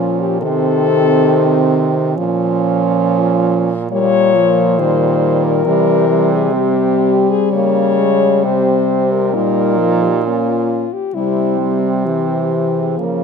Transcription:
0.00 0.45 A#2 medium
0.00 0.41 F3 medium
0.00 0.41 C#4 medium
0.00 0.22 F4 medium
0.20 0.41 G4 medium
0.41 2.18 C3 medium
0.41 2.19 D#3 medium
0.41 2.14 C4 medium
0.41 2.14 A4 loud
2.17 3.89 A#2 medium
2.17 3.75 F3 medium
2.17 3.74 C#4 medium
3.91 5.67 A#2 medium
3.91 4.36 G3 medium
3.91 4.80 A#3 medium
3.91 4.81 C#5 loud
4.35 4.80 F3 medium
4.78 5.66 D#3 medium
4.78 5.65 G3 medium
4.78 5.46 C5 medium
5.44 6.34 A#4 loud
5.65 7.36 C3 medium
5.65 6.52 E3 medium
5.65 6.08 G3 medium
6.10 6.55 G3 medium
6.32 6.55 G#4 medium
6.52 9.30 G3 medium
6.52 7.54 C4 medium
6.52 7.31 G4 medium
7.30 7.52 G#4 loud
7.53 8.46 C#3 medium
7.53 8.01 A#3 medium
7.53 8.46 C#5 loud
8.00 8.45 G#3 medium
8.44 9.35 C3 medium
8.44 9.36 C4 medium
8.44 9.13 C5 medium
9.12 10.04 A#4 medium
9.33 10.88 A#2 medium
9.33 9.80 G3 medium
9.33 10.27 D#4 medium
9.78 10.11 F3 medium
10.03 10.24 G4 medium
10.23 10.87 A#3 medium
10.23 10.89 C#4 medium
10.23 10.95 F4 medium
10.93 11.16 G4 medium
11.14 12.96 C3 medium
11.14 11.58 G3 medium
11.14 12.03 C4 medium
11.14 11.79 E4 medium
11.61 12.08 G3 medium
12.06 13.00 E3 medium
12.06 13.00 C4 medium
12.06 12.80 G4 medium
12.78 13.05 G#4 medium
12.99 13.24 C#3 medium
12.99 13.24 F3 medium
12.99 13.24 A#3 medium
13.03 13.24 A#4 medium

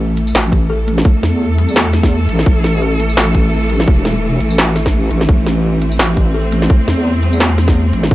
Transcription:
0.00 0.33 A1 loud
0.00 8.15 E3 medium
0.00 0.51 A3 medium
0.00 8.15 A3 medium
0.00 5.27 A4 medium
0.17 closed hi-hat medium
0.27 tambourine medium
0.34 1.04 A1 loud
0.34 snare loud
0.52 kick medium
0.52 closed hi-hat medium
0.70 0.86 A4 loud
0.87 1.39 A3 loud
0.87 closed hi-hat medium
0.98 snare medium
1.05 kick loud
1.23 2.28 E2 loud
1.23 snare medium
1.23 closed hi-hat medium
1.40 1.56 C4 medium
1.58 1.75 G3 loud
1.58 closed hi-hat medium
1.68 tambourine medium
1.75 1.92 A3 medium
1.75 snare loud
1.93 2.63 A3 medium
1.93 snare soft
1.93 closed hi-hat medium
1.93 tambourine soft
2.03 kick medium
2.03 snare medium
2.29 2.45 A1 loud
2.29 closed hi-hat medium
2.39 snare medium
2.46 3.16 A1 loud
2.46 kick loud
2.64 snare medium
2.64 closed hi-hat medium
2.82 2.98 A4 medium
3.00 3.51 A3 loud
3.00 closed hi-hat medium
3.09 tambourine medium
3.17 3.87 A1 loud
3.17 snare loud
3.35 kick medium
3.35 closed hi-hat medium
3.53 3.69 C4 medium
3.70 3.87 G3 loud
3.70 closed hi-hat medium
3.80 snare medium
3.88 4.39 E1 loud
3.88 4.04 A3 medium
3.88 kick loud
4.05 4.74 A3 medium
4.05 snare soft
4.05 closed hi-hat medium
4.40 5.10 A1 loud
4.40 closed hi-hat medium
4.50 tambourine medium
4.58 snare loud
4.76 snare soft
4.76 closed hi-hat medium
4.76 tambourine soft
4.86 kick medium
4.86 snare medium
4.94 5.11 A3 medium
5.11 5.28 A1 loud
5.11 5.28 D4 loud
5.11 closed hi-hat medium
5.21 snare medium
5.29 5.98 A1 loud
5.29 5.45 A3 medium
5.29 8.15 C4 medium
5.29 kick loud
5.46 6.15 A3 medium
5.46 snare medium
5.46 closed hi-hat medium
5.82 closed hi-hat medium
5.92 tambourine medium
5.99 6.69 A1 loud
5.99 snare loud
6.17 kick medium
6.17 closed hi-hat medium
6.34 6.51 A4 loud
6.52 7.04 A3 loud
6.52 closed hi-hat medium
6.62 snare medium
6.70 kick loud
6.88 7.92 E2 loud
6.88 snare medium
6.88 closed hi-hat medium
7.05 7.21 C4 medium
7.23 7.40 G3 loud
7.23 closed hi-hat medium
7.33 tambourine medium
7.40 7.56 A3 medium
7.40 snare loud
7.58 8.15 A3 medium
7.58 snare soft
7.58 closed hi-hat medium
7.58 tambourine soft
7.68 kick medium
7.68 snare medium
7.93 8.10 A1 loud
7.93 closed hi-hat medium
8.03 snare medium
8.11 8.15 A1 loud
8.11 kick loud

